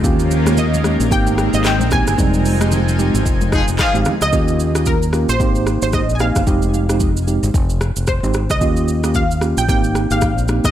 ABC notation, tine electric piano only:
X:1
M:4/4
L:1/16
Q:"Swing 16ths" 1/4=112
K:Ab
V:1 name="Tine electric piano"
[B,DFG]3 [B,DFG] z2 [B,DFG]2 [B,CEG]3 [B,CEG] z2 [B,CEG]2 | [G,A,CE]3 [A,CEG] z2 [A,CEG]2 z4 z [A,CEG] z2 | [B,DFG]3 [B,DFG] z2 [B,DFG]2 [B,CEG]3 [B,CEG] z2 [B,CEG]2 | [A,CEG]3 [A,CEG] z2 [A,CEG]2 z4 z [A,CEG] z2 |
[B,DFG]3 [B,DFG] z2 [B,DFG]2 [B,CEG]3 [B,CEG] z2 [B,CEG]2 |]